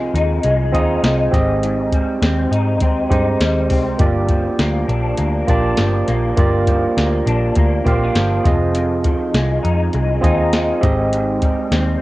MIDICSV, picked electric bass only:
0, 0, Header, 1, 2, 480
1, 0, Start_track
1, 0, Tempo, 593472
1, 1316, Time_signature, 4, 2, 24, 8
1, 9720, End_track
2, 0, Start_track
2, 0, Title_t, "Picked electric bass"
2, 0, Program_c, 0, 34
2, 113, Note_on_c, 0, 39, 89
2, 307, Note_off_c, 0, 39, 0
2, 358, Note_on_c, 0, 36, 83
2, 596, Note_off_c, 0, 36, 0
2, 596, Note_on_c, 0, 39, 80
2, 788, Note_off_c, 0, 39, 0
2, 836, Note_on_c, 0, 36, 82
2, 1028, Note_off_c, 0, 36, 0
2, 1076, Note_on_c, 0, 32, 95
2, 1651, Note_off_c, 0, 32, 0
2, 1794, Note_on_c, 0, 39, 88
2, 1986, Note_off_c, 0, 39, 0
2, 2031, Note_on_c, 0, 44, 89
2, 2279, Note_off_c, 0, 44, 0
2, 2279, Note_on_c, 0, 39, 94
2, 2469, Note_off_c, 0, 39, 0
2, 2515, Note_on_c, 0, 43, 84
2, 2707, Note_off_c, 0, 43, 0
2, 2751, Note_on_c, 0, 39, 80
2, 2999, Note_off_c, 0, 39, 0
2, 2999, Note_on_c, 0, 36, 94
2, 3190, Note_off_c, 0, 36, 0
2, 3233, Note_on_c, 0, 31, 97
2, 3618, Note_off_c, 0, 31, 0
2, 3713, Note_on_c, 0, 38, 95
2, 3906, Note_off_c, 0, 38, 0
2, 3951, Note_on_c, 0, 34, 85
2, 4144, Note_off_c, 0, 34, 0
2, 4194, Note_on_c, 0, 38, 85
2, 4386, Note_off_c, 0, 38, 0
2, 4436, Note_on_c, 0, 34, 89
2, 4628, Note_off_c, 0, 34, 0
2, 4678, Note_on_c, 0, 31, 95
2, 4869, Note_off_c, 0, 31, 0
2, 4919, Note_on_c, 0, 34, 81
2, 5109, Note_off_c, 0, 34, 0
2, 5158, Note_on_c, 0, 31, 94
2, 5541, Note_off_c, 0, 31, 0
2, 5638, Note_on_c, 0, 38, 87
2, 5829, Note_off_c, 0, 38, 0
2, 5874, Note_on_c, 0, 34, 82
2, 6067, Note_off_c, 0, 34, 0
2, 6117, Note_on_c, 0, 38, 90
2, 6308, Note_off_c, 0, 38, 0
2, 6355, Note_on_c, 0, 34, 91
2, 6547, Note_off_c, 0, 34, 0
2, 6593, Note_on_c, 0, 31, 88
2, 6787, Note_off_c, 0, 31, 0
2, 6837, Note_on_c, 0, 29, 107
2, 7413, Note_off_c, 0, 29, 0
2, 7556, Note_on_c, 0, 36, 94
2, 7748, Note_off_c, 0, 36, 0
2, 7801, Note_on_c, 0, 41, 96
2, 7992, Note_off_c, 0, 41, 0
2, 8042, Note_on_c, 0, 36, 95
2, 8232, Note_off_c, 0, 36, 0
2, 8277, Note_on_c, 0, 39, 81
2, 8662, Note_off_c, 0, 39, 0
2, 8761, Note_on_c, 0, 32, 89
2, 9337, Note_off_c, 0, 32, 0
2, 9475, Note_on_c, 0, 39, 94
2, 9669, Note_off_c, 0, 39, 0
2, 9720, End_track
0, 0, End_of_file